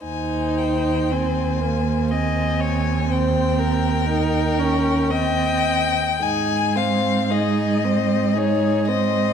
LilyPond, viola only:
\new Staff \with { instrumentName = "Viola" } { \time 3/4 \key aes \major \tempo 4 = 58 ees'4 c'8 bes8 c'4 | c'4 ees'8 des'8 c'4 | ees'8 c'8 ees'8 c'8 ees'8 c'8 | }